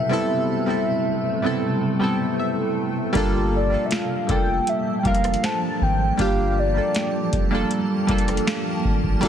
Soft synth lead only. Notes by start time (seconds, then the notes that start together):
Already playing: E5
3.56 D5
3.86 E5
3.93 F5
4.31 G5
4.69 E5
4.99 G5
5.06 F5
5.45 A5
5.83 G5
6.21 F5
6.59 D5